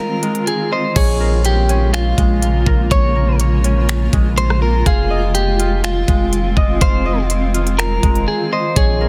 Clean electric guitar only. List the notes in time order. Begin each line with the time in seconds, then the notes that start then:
Already playing: A#4
0.47 G#4
0.73 C5
0.96 G#4
1.45 G4
1.93 F4
2.92 C#5
4.38 C5
4.62 A#4
4.86 G#4
5.35 G4
5.84 F4
6.82 C5
7.79 A#4
8.28 G#4
8.53 C5
8.77 G#4